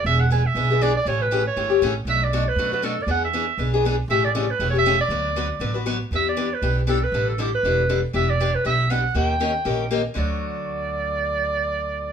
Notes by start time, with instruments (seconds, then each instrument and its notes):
0.04 upright bass E1, steel-string acoustic guitar E3 B3 D4 G#4, clarinet E5
0.20 clarinet F#5
0.30 steel-string acoustic guitar E3 B3 D4 G#4, clarinet G#5
0.47 clarinet E5
0.55 upright bass B1, steel-string acoustic guitar E3 B3 D4 G#4
0.70 steel-string acoustic guitar B3 D4 G#4
0.82 steel-string acoustic guitar E3 B3 D4 G#4, clarinet D5
0.97 clarinet D5
1.05 upright bass A1, steel-string acoustic guitar C#3 E3 A3 C#4 G4, clarinet C#5
1.22 clarinet B4
1.31 steel-string acoustic guitar C#3 E3 A3 C#4 G4
1.47 clarinet C#5
1.56 upright bass G1, steel-string acoustic guitar C#3 E3 A3 C#4 G4
1.70 steel-string acoustic guitar A3 C#4 G4
1.82 upright bass A1, steel-string acoustic guitar C#3 E3 A3 C#4 G4
2.05 upright bass B1, steel-string acoustic guitar B2 F#3 A3 D4 F#4
2.09 clarinet E5
2.24 clarinet D5
2.33 steel-string acoustic guitar B2 F#3 A3 D4 F#4
2.48 clarinet B4
2.56 upright bass F#2, steel-string acoustic guitar B2 F#3 A3 D4 F#4
2.72 steel-string acoustic guitar A3 D4 F#4, clarinet B4
2.82 steel-string acoustic guitar B2 F#3 A3 D4 F#4, clarinet A4
3.02 clarinet D5
3.07 upright bass E2, steel-string acoustic guitar E3 B3 D4 G#4
3.11 clarinet F#5
3.25 clarinet E5
3.33 steel-string acoustic guitar E3 B3 D4 G#4
3.58 upright bass B1, steel-string acoustic guitar E3 B3 D4 G#4
3.74 steel-string acoustic guitar B3 D4 G#4
3.85 steel-string acoustic guitar E3 B3 D4 G#4
4.08 upright bass A1, steel-string acoustic guitar C#3 E3 A3 C#4 G4, clarinet E5
4.25 clarinet D5
4.35 steel-string acoustic guitar C#3 E3 A3 C#4 G4
4.51 clarinet B4
4.59 upright bass E1, steel-string acoustic guitar C#3 E3 A3 C#4 G4
4.70 steel-string acoustic guitar G4, clarinet C#5
4.75 steel-string acoustic guitar A3 C#4, clarinet E5
4.86 steel-string acoustic guitar C#3 E3 A3 C#4 G4
5.01 clarinet D5
5.08 upright bass D2, steel-string acoustic guitar D3 F#3 B3 F#4 B4
5.36 steel-string acoustic guitar D3 F#3 B3 F#4 B4
5.60 upright bass A1, steel-string acoustic guitar D3 F#3 B3 F#4 B4
5.74 steel-string acoustic guitar B3 F#4 B4
5.86 steel-string acoustic guitar D3 F#3 B3 F#4 B4
6.11 upright bass E2, steel-string acoustic guitar E3 B3 D4 G4
6.15 clarinet E5
6.29 clarinet D5
6.37 steel-string acoustic guitar E3 B3 D4 G4
6.54 clarinet B4
6.62 upright bass B1, steel-string acoustic guitar E3 B3 D4 G4
6.87 steel-string acoustic guitar E3 B3 D4 G4, clarinet A4
7.04 clarinet B4
7.12 upright bass A1, steel-string acoustic guitar D3 G3 D4 E4 A4
7.29 clarinet A4
7.38 steel-string acoustic guitar D3 G3 D4 E4 A4, clarinet G4
7.55 clarinet B4
7.63 upright bass E1, steel-string acoustic guitar D3 G3 D4 E4 A4
7.89 steel-string acoustic guitar D3 G3 D4 E4 A4
8.13 upright bass E1, steel-string acoustic guitar E3 B3 D4 G4, clarinet E5
8.30 clarinet D5
8.40 steel-string acoustic guitar E3 B3 D4 G4
8.55 clarinet B4
8.65 upright bass B1, steel-string acoustic guitar E3 B3 D4 G4, clarinet E5
8.90 steel-string acoustic guitar E3 B3 D4 G4, clarinet F#5
9.14 upright bass D#2, steel-string acoustic guitar D#3 A#3 C#4 G4 A#4, clarinet G5
9.40 steel-string acoustic guitar D#3 A#3 C#4 G4 A#4
9.65 upright bass A#1, steel-string acoustic guitar D#3 A#3 C#4 G4 A#4
9.91 steel-string acoustic guitar D#3 A#3 C#4 G4 A#4
10.14 upright bass D2, steel-string acoustic guitar D3 F#3 A3 F#4, clarinet D5